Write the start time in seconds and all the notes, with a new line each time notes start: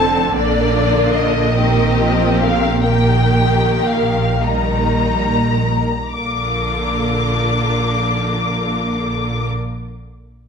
Already playing: F1 F2 D3 C4 A4 A5
0.36 A#1 A#2 D4 F4 A#4 D5
1.15 D#5
1.56 D#3 C4 G4
1.98 F3
2.40 D3 F5
2.85 D#3 A#3 G4 A#4 G5
3.88 F5
4.41 D#3 G3 D#4 A#4 A#5
6.14 A#1 A#2 D3 D4 F4 A#4 D6